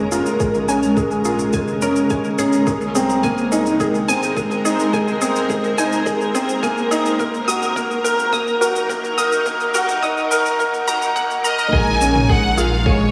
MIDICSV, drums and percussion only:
0, 0, Header, 1, 2, 480
1, 0, Start_track
1, 0, Tempo, 566038
1, 343, Time_signature, 4, 2, 24, 8
1, 11120, End_track
2, 0, Start_track
2, 0, Title_t, "Drums"
2, 99, Note_on_c, 9, 82, 69
2, 184, Note_off_c, 9, 82, 0
2, 221, Note_on_c, 9, 82, 29
2, 306, Note_off_c, 9, 82, 0
2, 341, Note_on_c, 9, 36, 102
2, 341, Note_on_c, 9, 82, 41
2, 426, Note_off_c, 9, 36, 0
2, 426, Note_off_c, 9, 82, 0
2, 462, Note_on_c, 9, 82, 18
2, 547, Note_off_c, 9, 82, 0
2, 583, Note_on_c, 9, 82, 67
2, 668, Note_off_c, 9, 82, 0
2, 703, Note_on_c, 9, 82, 29
2, 788, Note_off_c, 9, 82, 0
2, 822, Note_on_c, 9, 36, 87
2, 823, Note_on_c, 9, 82, 38
2, 906, Note_off_c, 9, 36, 0
2, 908, Note_off_c, 9, 82, 0
2, 941, Note_on_c, 9, 82, 19
2, 1026, Note_off_c, 9, 82, 0
2, 1059, Note_on_c, 9, 82, 64
2, 1143, Note_off_c, 9, 82, 0
2, 1180, Note_on_c, 9, 82, 29
2, 1265, Note_off_c, 9, 82, 0
2, 1299, Note_on_c, 9, 82, 42
2, 1303, Note_on_c, 9, 36, 100
2, 1384, Note_off_c, 9, 82, 0
2, 1387, Note_off_c, 9, 36, 0
2, 1422, Note_on_c, 9, 82, 20
2, 1507, Note_off_c, 9, 82, 0
2, 1541, Note_on_c, 9, 82, 64
2, 1626, Note_off_c, 9, 82, 0
2, 1662, Note_on_c, 9, 82, 30
2, 1747, Note_off_c, 9, 82, 0
2, 1782, Note_on_c, 9, 82, 39
2, 1784, Note_on_c, 9, 36, 94
2, 1867, Note_off_c, 9, 82, 0
2, 1868, Note_off_c, 9, 36, 0
2, 1903, Note_on_c, 9, 82, 19
2, 1988, Note_off_c, 9, 82, 0
2, 2024, Note_on_c, 9, 82, 68
2, 2109, Note_off_c, 9, 82, 0
2, 2143, Note_on_c, 9, 82, 31
2, 2228, Note_off_c, 9, 82, 0
2, 2264, Note_on_c, 9, 36, 101
2, 2265, Note_on_c, 9, 82, 38
2, 2349, Note_off_c, 9, 36, 0
2, 2350, Note_off_c, 9, 82, 0
2, 2384, Note_on_c, 9, 82, 19
2, 2469, Note_off_c, 9, 82, 0
2, 2504, Note_on_c, 9, 82, 67
2, 2588, Note_off_c, 9, 82, 0
2, 2626, Note_on_c, 9, 45, 57
2, 2626, Note_on_c, 9, 82, 27
2, 2711, Note_off_c, 9, 45, 0
2, 2711, Note_off_c, 9, 82, 0
2, 2744, Note_on_c, 9, 36, 89
2, 2745, Note_on_c, 9, 82, 37
2, 2828, Note_off_c, 9, 36, 0
2, 2830, Note_off_c, 9, 82, 0
2, 2865, Note_on_c, 9, 82, 19
2, 2950, Note_off_c, 9, 82, 0
2, 2986, Note_on_c, 9, 82, 68
2, 3071, Note_off_c, 9, 82, 0
2, 3107, Note_on_c, 9, 82, 27
2, 3191, Note_off_c, 9, 82, 0
2, 3224, Note_on_c, 9, 36, 103
2, 3225, Note_on_c, 9, 82, 39
2, 3309, Note_off_c, 9, 36, 0
2, 3310, Note_off_c, 9, 82, 0
2, 3347, Note_on_c, 9, 82, 21
2, 3432, Note_off_c, 9, 82, 0
2, 3467, Note_on_c, 9, 82, 70
2, 3552, Note_off_c, 9, 82, 0
2, 3587, Note_on_c, 9, 82, 29
2, 3672, Note_off_c, 9, 82, 0
2, 3703, Note_on_c, 9, 36, 97
2, 3706, Note_on_c, 9, 82, 39
2, 3788, Note_off_c, 9, 36, 0
2, 3791, Note_off_c, 9, 82, 0
2, 3826, Note_on_c, 9, 45, 57
2, 3826, Note_on_c, 9, 82, 19
2, 3911, Note_off_c, 9, 45, 0
2, 3911, Note_off_c, 9, 82, 0
2, 3947, Note_on_c, 9, 82, 71
2, 4032, Note_off_c, 9, 82, 0
2, 4068, Note_on_c, 9, 82, 28
2, 4152, Note_off_c, 9, 82, 0
2, 4183, Note_on_c, 9, 36, 91
2, 4186, Note_on_c, 9, 82, 39
2, 4268, Note_off_c, 9, 36, 0
2, 4271, Note_off_c, 9, 82, 0
2, 4306, Note_on_c, 9, 82, 20
2, 4391, Note_off_c, 9, 82, 0
2, 4423, Note_on_c, 9, 82, 67
2, 4508, Note_off_c, 9, 82, 0
2, 4545, Note_on_c, 9, 82, 29
2, 4630, Note_off_c, 9, 82, 0
2, 4663, Note_on_c, 9, 36, 89
2, 4664, Note_on_c, 9, 82, 39
2, 4748, Note_off_c, 9, 36, 0
2, 4749, Note_off_c, 9, 82, 0
2, 4785, Note_on_c, 9, 82, 20
2, 4869, Note_off_c, 9, 82, 0
2, 4904, Note_on_c, 9, 82, 65
2, 4989, Note_off_c, 9, 82, 0
2, 5025, Note_on_c, 9, 82, 28
2, 5110, Note_off_c, 9, 82, 0
2, 5142, Note_on_c, 9, 36, 96
2, 5144, Note_on_c, 9, 82, 38
2, 5227, Note_off_c, 9, 36, 0
2, 5229, Note_off_c, 9, 82, 0
2, 5266, Note_on_c, 9, 82, 20
2, 5351, Note_off_c, 9, 82, 0
2, 5385, Note_on_c, 9, 82, 68
2, 5470, Note_off_c, 9, 82, 0
2, 5504, Note_on_c, 9, 82, 30
2, 5589, Note_off_c, 9, 82, 0
2, 5622, Note_on_c, 9, 36, 95
2, 5626, Note_on_c, 9, 82, 42
2, 5707, Note_off_c, 9, 36, 0
2, 5711, Note_off_c, 9, 82, 0
2, 5746, Note_on_c, 9, 82, 19
2, 5830, Note_off_c, 9, 82, 0
2, 5866, Note_on_c, 9, 82, 68
2, 5951, Note_off_c, 9, 82, 0
2, 5985, Note_on_c, 9, 82, 28
2, 6070, Note_off_c, 9, 82, 0
2, 6102, Note_on_c, 9, 36, 101
2, 6105, Note_on_c, 9, 82, 39
2, 6187, Note_off_c, 9, 36, 0
2, 6190, Note_off_c, 9, 82, 0
2, 6226, Note_on_c, 9, 82, 19
2, 6311, Note_off_c, 9, 82, 0
2, 6347, Note_on_c, 9, 82, 69
2, 6432, Note_off_c, 9, 82, 0
2, 6467, Note_on_c, 9, 45, 57
2, 6467, Note_on_c, 9, 82, 31
2, 6551, Note_off_c, 9, 45, 0
2, 6551, Note_off_c, 9, 82, 0
2, 6582, Note_on_c, 9, 36, 89
2, 6588, Note_on_c, 9, 82, 38
2, 6667, Note_off_c, 9, 36, 0
2, 6673, Note_off_c, 9, 82, 0
2, 6707, Note_on_c, 9, 82, 19
2, 6792, Note_off_c, 9, 82, 0
2, 6827, Note_on_c, 9, 82, 65
2, 6912, Note_off_c, 9, 82, 0
2, 6948, Note_on_c, 9, 82, 26
2, 7033, Note_off_c, 9, 82, 0
2, 7062, Note_on_c, 9, 36, 95
2, 7068, Note_on_c, 9, 82, 37
2, 7147, Note_off_c, 9, 36, 0
2, 7153, Note_off_c, 9, 82, 0
2, 7187, Note_on_c, 9, 82, 19
2, 7272, Note_off_c, 9, 82, 0
2, 7309, Note_on_c, 9, 82, 67
2, 7394, Note_off_c, 9, 82, 0
2, 7427, Note_on_c, 9, 82, 31
2, 7512, Note_off_c, 9, 82, 0
2, 7542, Note_on_c, 9, 36, 92
2, 7548, Note_on_c, 9, 82, 41
2, 7627, Note_off_c, 9, 36, 0
2, 7633, Note_off_c, 9, 82, 0
2, 7669, Note_on_c, 9, 45, 64
2, 7669, Note_on_c, 9, 82, 18
2, 7754, Note_off_c, 9, 45, 0
2, 7754, Note_off_c, 9, 82, 0
2, 7787, Note_on_c, 9, 82, 66
2, 7872, Note_off_c, 9, 82, 0
2, 7906, Note_on_c, 9, 82, 30
2, 7990, Note_off_c, 9, 82, 0
2, 8023, Note_on_c, 9, 36, 100
2, 8024, Note_on_c, 9, 82, 42
2, 8108, Note_off_c, 9, 36, 0
2, 8109, Note_off_c, 9, 82, 0
2, 8143, Note_on_c, 9, 82, 20
2, 8228, Note_off_c, 9, 82, 0
2, 8263, Note_on_c, 9, 82, 70
2, 8347, Note_off_c, 9, 82, 0
2, 8386, Note_on_c, 9, 45, 61
2, 8386, Note_on_c, 9, 82, 31
2, 8470, Note_off_c, 9, 45, 0
2, 8470, Note_off_c, 9, 82, 0
2, 8503, Note_on_c, 9, 36, 91
2, 8507, Note_on_c, 9, 82, 40
2, 8588, Note_off_c, 9, 36, 0
2, 8592, Note_off_c, 9, 82, 0
2, 8628, Note_on_c, 9, 82, 19
2, 8713, Note_off_c, 9, 82, 0
2, 8747, Note_on_c, 9, 82, 69
2, 8832, Note_off_c, 9, 82, 0
2, 8869, Note_on_c, 9, 82, 29
2, 8953, Note_off_c, 9, 82, 0
2, 8983, Note_on_c, 9, 36, 102
2, 8988, Note_on_c, 9, 82, 38
2, 9068, Note_off_c, 9, 36, 0
2, 9073, Note_off_c, 9, 82, 0
2, 9106, Note_on_c, 9, 82, 19
2, 9191, Note_off_c, 9, 82, 0
2, 9226, Note_on_c, 9, 82, 68
2, 9311, Note_off_c, 9, 82, 0
2, 9346, Note_on_c, 9, 82, 30
2, 9431, Note_off_c, 9, 82, 0
2, 9465, Note_on_c, 9, 36, 101
2, 9467, Note_on_c, 9, 82, 44
2, 9549, Note_off_c, 9, 36, 0
2, 9552, Note_off_c, 9, 82, 0
2, 9587, Note_on_c, 9, 82, 20
2, 9672, Note_off_c, 9, 82, 0
2, 9707, Note_on_c, 9, 82, 68
2, 9791, Note_off_c, 9, 82, 0
2, 9825, Note_on_c, 9, 82, 31
2, 9910, Note_off_c, 9, 82, 0
2, 9945, Note_on_c, 9, 36, 104
2, 10030, Note_off_c, 9, 36, 0
2, 10187, Note_on_c, 9, 82, 63
2, 10272, Note_off_c, 9, 82, 0
2, 10308, Note_on_c, 9, 45, 64
2, 10393, Note_off_c, 9, 45, 0
2, 10426, Note_on_c, 9, 36, 94
2, 10511, Note_off_c, 9, 36, 0
2, 10667, Note_on_c, 9, 82, 61
2, 10752, Note_off_c, 9, 82, 0
2, 10906, Note_on_c, 9, 36, 100
2, 10991, Note_off_c, 9, 36, 0
2, 11120, End_track
0, 0, End_of_file